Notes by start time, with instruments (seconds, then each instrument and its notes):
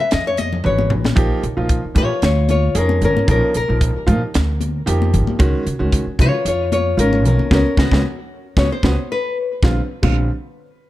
0.00 nylon-string guitar E5
0.11 upright bass F2, nylon-string guitar D#5, snare, closed hi-hat
0.27 nylon-string guitar C#5
0.37 nylon-string guitar D#5, closed hi-hat, high conga
0.53 low conga
0.64 upright bass G#1, grand piano G#3 C#4 F#4 B4, nylon-string guitar C#5, high tom
0.79 high conga
0.90 upright bass A#1, mid tom, low conga
1.05 snare, high conga
1.15 upright bass A#1, grand piano F3 A#3 D#4 G4, kick, closed hi-hat
1.42 upright bass A#1, grand piano D#4 G#4, closed hi-hat
1.57 upright bass A#1, grand piano F3 A#3 D#4 F4
1.69 kick, closed hi-hat
1.82 grand piano D#4 A#4, muted upright bass stroke
1.94 upright bass A#2, grand piano F3 A#3 D#4 G4, nylon-string guitar F4 C#5, kick, closed hi-hat, low conga
2.09 grand piano D#4 A#4
2.22 upright bass D2, nylon-string guitar F4 C#5, snare, closed hi-hat
2.49 nylon-string guitar F4 C#5, closed hi-hat, high conga
2.75 upright bass F2, grand piano F3 A#3 D#4 G#4, nylon-string guitar C#4 A#4, closed hi-hat
2.89 high conga
3.02 upright bass G#1, nylon-string guitar C#4 A#4, closed hi-hat, low conga
3.16 muted upright bass stroke, high conga
3.28 upright bass A#1, grand piano F3 A#3 D#4 A#4, nylon-string guitar C#4 A#4, kick, closed hi-hat
3.54 upright bass A#1, grand piano D#4 G#4, nylon-string guitar A#4, closed hi-hat
3.68 upright bass A#1, grand piano F3 A#3 D#4 A#4
3.81 kick, closed hi-hat
3.94 grand piano D#4 G4, muted upright bass stroke
4.06 upright bass A#2, grand piano F3 A#3 D#4 F4, kick, closed hi-hat, low conga
4.21 grand piano D#4 G4
4.34 upright bass D2, snare, closed hi-hat
4.61 closed hi-hat, high conga
4.86 upright bass F2, grand piano F3 A#3 D#4 G4, closed hi-hat
5.02 high conga
5.14 upright bass G#1, closed hi-hat, low conga
5.27 muted upright bass stroke, high conga
5.39 upright bass C#2, grand piano D#3 G#3 C#4 F#4, kick, closed hi-hat
5.66 upright bass C#2, grand piano C#4 F#4, closed hi-hat
5.79 upright bass C#2, grand piano D#3 G#3 C#4 F#4
5.92 kick, closed hi-hat
6.06 grand piano C#4 F#4, muted upright bass stroke
6.19 upright bass C#3, grand piano D#3 G#3 C#4 F#4, nylon-string guitar F4 C#5, kick, closed hi-hat, low conga
6.33 grand piano C#4 F4
6.45 upright bass F2, nylon-string guitar F4 C#5, closed hi-hat
6.72 nylon-string guitar F4 C#5, closed hi-hat, high conga
6.97 upright bass G#1, grand piano D#3 G#3 C#4 F4, nylon-string guitar C#4 A#4, closed hi-hat
7.13 high conga
7.24 upright bass B1, nylon-string guitar C#4 A#4, closed hi-hat, low conga
7.39 muted upright bass stroke, high conga
7.51 upright bass C#2, grand piano B3 C#4 F#4, nylon-string guitar C#4 A#4, kick, snare, high conga
7.77 upright bass C#2, grand piano B3 C#4 F#4, nylon-string guitar F#4, kick, snare, high conga
7.91 upright bass C#2, grand piano B3 C#4 F#4, kick, snare, high conga
8.57 upright bass C#2, grand piano B3 C#4 F#4, nylon-string guitar C#5, kick, snare, high conga
8.72 nylon-string guitar C5
8.83 upright bass C#2, grand piano B3 C#4 F#4, kick, snare, high conga
9.12 nylon-string guitar B4
9.63 upright bass A#1, grand piano D3 G3 C4 F4, kick, snare, high conga
10.03 upright bass A#1, grand piano D3 G3 C4 F4, kick, crash, high conga